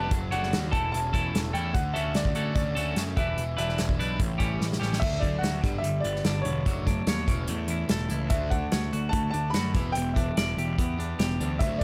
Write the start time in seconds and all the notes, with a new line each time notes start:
Already playing: F1 G3 B3 D4 G4 B4 A5
0.11 F#1 F#3, kick, closed hi-hat
0.31 F#1 A3 D4 F#4 C#5 F#5, closed hi-hat
0.43 snare
0.52 D#2 F#4, snare, closed hi-hat
0.71 E1 E3 A3 C#4 E4 A4 A5, kick, closed hi-hat
0.92 E1 C#4 A5, closed hi-hat
1.13 E1 A3 C#4 E4 A4, kick, closed hi-hat
1.33 E1 A3, snare, closed hi-hat
1.53 E2 A3 C#4 E4 A4 G5, closed hi-hat
1.74 D2 D3 F#5, kick, closed hi-hat
1.94 D2 A3 C#4 F#4 A4 E5, closed hi-hat
2.15 D2 F#4 D5, snare, closed hi-hat
2.25 kick
2.35 D2 A3 C#4 F#4 A4, closed hi-hat
2.55 D2 C#4 D5, kick, closed hi-hat
2.75 D2 A3 C#4 F#4 A4, closed hi-hat
2.96 F#2 A3, snare, closed hi-hat
3.17 E1 E3 G3 D4 E4 B4 E5, kick, closed hi-hat
3.37 E1 E3, closed hi-hat
3.57 E1 G3 D4 E4 B4 E5, closed hi-hat
3.69 snare
3.78 E1 E4, snare, closed hi-hat
3.89 kick
3.99 B1 G3 D4 E4 B4, closed hi-hat
4.19 A1 A2, kick, closed hi-hat
4.38 A1 E3 G3 C#4 E4 G4, kick, closed hi-hat
4.60 A1 G3, snare
4.72 snare
4.80 A1 E3 G3 C#4 E4 G4, snare
4.93 snare
5.00 D2 D3 F#3 A3 E5, kick, crash
5.20 D3 F#3 A3 D5, kick, closed hi-hat
5.38 D2 F#4 F#5
5.43 D3 F#3, snare, closed hi-hat
5.61 G1 G2 D3 G3, kick, closed hi-hat
5.78 G1 E5
5.83 G2 D3 G3, closed hi-hat
6.00 G1 G2 D5
6.04 D3 B3, closed hi-hat
6.16 snare
6.24 G1 G2 D3 D4, snare, closed hi-hat
6.42 E1 G2 D3 C#5, closed hi-hat
6.46 B3
6.65 F#1 F#3 A3 D4, kick, closed hi-hat
6.86 F#3 A3 D4, kick, closed hi-hat
7.07 D#2 F#3 A3 C#5, snare, closed hi-hat
7.27 E1 E3 A3 C#4, kick, closed hi-hat
7.47 E2 E3 A3, closed hi-hat
7.68 E3 A3 E4, closed hi-hat
7.88 E1 E3 A3 A4, snare, closed hi-hat
8.08 C#2 E3 A3 E4, closed hi-hat
8.29 D2 D3 A3 D4 E5, kick, closed hi-hat
8.50 D3 A3 D4 F#5, kick, closed hi-hat
8.72 D2 D3 A3 C#5, snare, closed hi-hat
8.93 D2 D3 A3 F#4, closed hi-hat
9.09 D2 D3 A3 A5, kick, closed hi-hat
9.31 D2 D3 A3 D4 A5, closed hi-hat
9.50 F#2 D3 B5, closed hi-hat
9.54 A3 F#4, snare
9.74 E1 E3 B3 E4, kick, closed hi-hat
9.92 E1 E3 G5, closed hi-hat
9.97 B3
10.14 E3 B3 D4 E5, kick, closed hi-hat
10.37 E1 E3 B3 D5, snare, closed hi-hat
10.57 E1 E3 B3 G4, closed hi-hat
10.78 E2 E3 B3, kick, closed hi-hat
10.98 E3 B3 D4, closed hi-hat
11.19 E1 E3 B3 G4, snare, closed hi-hat
11.40 D2 E3 B3 D4, closed hi-hat
11.59 D2 D3 F#3 A3 E5, kick, closed hi-hat
11.78 D5